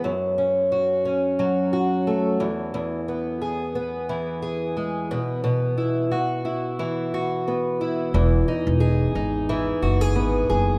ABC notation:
X:1
M:4/4
L:1/16
Q:"Swing 16ths" 1/4=89
K:E
V:1 name="Twelve-string acoustic guitar"
F,,2 C2 F2 C2 F,2 F2 A,2 E,,2 | E,,2 B,2 G2 B,2 E,2 G2 G,2 B,,2 | B,,2 E2 F2 E2 E,2 F2 B,2 E2 | E,,2 D2 G2 D2 E,2 F G B,2 G2 |]
V:2 name="Upright bass" clef=bass
z16 | z16 | z16 | E,,,2 z E,,,3 G,,,4 F,,,2 G,,,2 F,,,2 |]